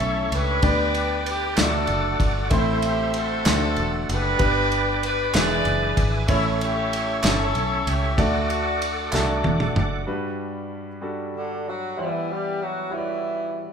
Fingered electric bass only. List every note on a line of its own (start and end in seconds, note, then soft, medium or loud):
0.00 0.29 B1 medium
0.32 0.61 C#2 medium
0.63 1.53 D2 loud
1.57 1.86 D2 medium
1.88 2.17 F#1 medium
2.20 2.49 G1 medium
2.52 3.42 A1 loud
3.46 3.75 D2 loud
3.78 4.06 E1 medium
4.09 4.38 F#1 medium
4.40 5.30 G1 loud
5.34 5.63 E1 loud
5.65 5.95 F#1 medium
5.98 6.27 G#1 medium
6.29 7.19 A1 medium
7.23 7.52 G1 medium
7.55 7.84 B1 medium
7.87 8.16 C#2 medium
8.18 9.09 D2 loud
9.13 9.42 C2 medium
9.44 9.73 E1 loud
9.76 10.05 F#1 medium